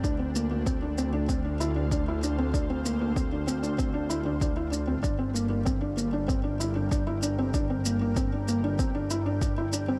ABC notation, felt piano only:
X:1
M:4/4
L:1/16
Q:1/4=96
K:Gm
V:1 name="Felt piano"
D C B, B, C D C D C D =E D D E D C | D C B, B, C D C D C D =E D D E D C | D C B, B, C D B, D C D =E D D E D C | D C B, B, C D B, D C D =E D D E D C |]